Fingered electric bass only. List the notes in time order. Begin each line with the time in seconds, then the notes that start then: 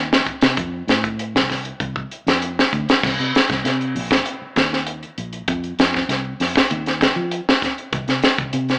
Already playing: D#2
0.42 C3
0.57 F2
0.88 A2
1.35 C2
1.80 C2
2.27 F2
2.73 D2
3.03 C2
3.19 C3
3.50 C2
3.65 C3
3.95 A#1
4.42 muted fingered electric bass stroke
4.56 D#2
5.18 A#1
5.48 F2
5.79 F2
6.09 C2
6.40 F2
6.71 D#2
7.16 F3
7.92 C2
8.08 C3
8.38 C2
8.53 C3